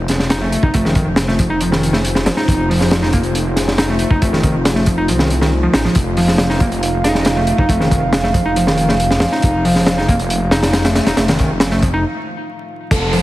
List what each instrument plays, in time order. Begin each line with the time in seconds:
Already playing: detuned saw bass F1, analog synth pad A3 D#4 F4 C5
0.08 snare, closed hi-hat
0.19 snare
0.30 picked electric bass D#4, snare, closed hi-hat
0.41 picked electric bass A3
0.52 closed hi-hat
0.63 detuned saw bass F1, picked electric bass D#4, kick
0.74 detuned saw bass F1, picked electric bass A3, kick, closed hi-hat
0.85 picked electric bass D#3, snare
0.95 picked electric bass D#3, kick, closed hi-hat
1.16 snare, closed hi-hat
1.28 picked electric bass A3, snare
1.39 picked electric bass F3, kick, closed hi-hat
1.50 picked electric bass D#4
1.61 picked electric bass F3, closed hi-hat
1.72 picked electric bass D#3, snare
1.83 closed hi-hat
1.93 picked electric bass A3, snare
2.05 closed hi-hat
2.15 snare
2.26 picked electric bass F3, snare, closed hi-hat
2.37 picked electric bass D#4, snare
2.48 detuned saw bass F1, kick, closed hi-hat
2.70 picked electric bass F3, open hi-hat
2.81 snare
2.91 snare, closed hi-hat
3.02 picked electric bass D#4, snare
3.13 picked electric bass A#3, kick, closed hi-hat
3.23 closed hi-hat
3.35 closed hi-hat
3.56 snare, closed hi-hat
3.68 snare
3.78 picked electric bass D#4, snare, closed hi-hat
3.89 picked electric bass A3
3.99 closed hi-hat
4.11 detuned saw bass F1, picked electric bass D#4, kick
4.22 detuned saw bass F1, picked electric bass A3, kick, closed hi-hat
4.33 picked electric bass D#3, snare
4.43 picked electric bass D#3, kick, closed hi-hat
4.65 snare, closed hi-hat
4.76 picked electric bass A3, snare
4.86 picked electric bass F3, kick, closed hi-hat
4.98 picked electric bass D#4
5.08 detuned saw bass C2, picked electric bass F3, closed hi-hat
5.19 picked electric bass D#3, snare
5.30 closed hi-hat
5.41 picked electric bass D#3, snare
5.63 picked electric bass F3
5.74 detuned saw bass A1, picked electric bass D#4, snare, closed hi-hat
5.85 picked electric bass F3, snare
5.95 detuned saw bass F1, analog synth pad F5, kick, closed hi-hat
6.17 picked electric bass F3, open hi-hat
6.28 snare
6.38 snare, closed hi-hat
6.50 picked electric bass D#4, snare
6.60 picked electric bass A#3, kick, closed hi-hat
6.72 closed hi-hat
6.83 closed hi-hat
7.04 picked electric bass D#4, snare, closed hi-hat
7.15 snare
7.25 snare, closed hi-hat
7.37 picked electric bass A3
7.47 closed hi-hat
7.58 detuned saw bass F1, picked electric bass D#4, kick
7.69 detuned saw bass F1, picked electric bass A3, kick, closed hi-hat
7.80 picked electric bass D#3, snare
7.91 picked electric bass D#3, kick, closed hi-hat
8.13 snare, closed hi-hat
8.24 picked electric bass A3, snare
8.34 picked electric bass F3, kick, closed hi-hat
8.46 picked electric bass D#4
8.56 picked electric bass F3, closed hi-hat
8.67 picked electric bass D#3, snare
8.78 closed hi-hat
8.89 picked electric bass A3, snare
9.00 closed hi-hat
9.11 snare
9.20 picked electric bass F3, snare, closed hi-hat
9.32 picked electric bass D#4, snare
9.42 detuned saw bass F1, kick, closed hi-hat
9.65 picked electric bass F3, open hi-hat
9.76 snare
9.86 snare, closed hi-hat
9.98 picked electric bass D#4, snare
10.08 picked electric bass A#3, kick, closed hi-hat
10.19 closed hi-hat
10.30 closed hi-hat
10.51 picked electric bass D#4, snare, closed hi-hat
10.63 snare, closed hi-hat
10.73 snare, closed hi-hat
10.85 picked electric bass A3, snare, closed hi-hat
10.95 snare, closed hi-hat
11.07 detuned saw bass F1, picked electric bass D#4, snare, closed hi-hat
11.17 detuned saw bass F1, picked electric bass A3, snare, closed hi-hat
11.28 picked electric bass D#3, snare, closed hi-hat
11.39 picked electric bass D#3, kick, closed hi-hat
11.60 snare, closed hi-hat
11.71 picked electric bass A3, snare
11.82 picked electric bass F3, kick, closed hi-hat
11.94 picked electric bass D#4
12.91 detuned saw bass F1, synth pluck A4, kick, closed hi-hat, crash, downlifter
13.02 synth pluck A4
13.13 picked electric bass F3, synth pluck A4, open hi-hat